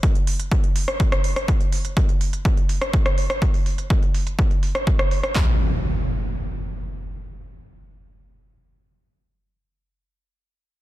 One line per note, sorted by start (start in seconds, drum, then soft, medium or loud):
0.03 kick loud
0.03 closed hi-hat medium
0.15 closed hi-hat soft
0.27 open hi-hat medium
0.40 closed hi-hat soft
0.52 kick loud
0.52 closed hi-hat medium
0.64 closed hi-hat soft
0.76 open hi-hat loud
0.88 cross-stick medium
1.00 kick loud
1.00 closed hi-hat medium
1.12 cross-stick medium
1.12 closed hi-hat soft
1.24 open hi-hat medium
1.36 cross-stick medium
1.36 closed hi-hat soft
1.48 kick loud
1.48 closed hi-hat medium
1.61 closed hi-hat soft
1.72 open hi-hat loud
1.85 closed hi-hat soft
1.97 kick loud
1.97 closed hi-hat medium
2.09 closed hi-hat soft
2.21 open hi-hat medium
2.33 closed hi-hat medium
2.45 kick loud
2.45 closed hi-hat medium
2.57 closed hi-hat soft
2.69 open hi-hat medium
2.81 cross-stick medium
2.81 closed hi-hat soft
2.93 kick loud
2.93 closed hi-hat medium
3.06 cross-stick medium
3.06 closed hi-hat soft
3.18 open hi-hat medium
3.30 cross-stick medium
3.30 closed hi-hat medium
3.42 kick loud
3.42 closed hi-hat medium
3.54 open hi-hat medium
3.66 open hi-hat medium
3.78 closed hi-hat soft
3.90 kick loud
3.90 closed hi-hat medium
4.03 closed hi-hat soft
4.14 open hi-hat medium
4.27 closed hi-hat medium
4.39 kick loud
4.39 closed hi-hat medium
4.51 closed hi-hat soft
4.63 open hi-hat loud
4.75 cross-stick medium
4.75 closed hi-hat soft
4.87 kick loud
4.87 closed hi-hat medium
4.99 cross-stick medium
4.99 closed hi-hat soft
5.11 open hi-hat medium
5.23 cross-stick medium
5.23 closed hi-hat medium
5.35 kick medium
5.35 clap medium
5.35 impact medium